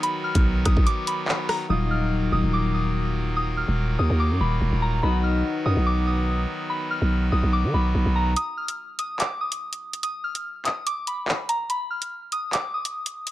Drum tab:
HH |x--x--x-x-x---o-|----------------|----------------|----------------|
CP |------------x---|----------------|----------------|----------------|
SD |------r-------r-|----------------|----------------|----------------|
BD |---o--oo--------|----------------|----------------|----------------|

HH |----------------|x--x--x-x--x-x-x|x--x--x-x-x---x-|x--x--x-x--x-x-x|
CP |----------------|--------x-------|------x-----x---|--------x-------|
SD |----------------|----------------|----------------|----------------|
BD |----------------|----------------|----------------|----------------|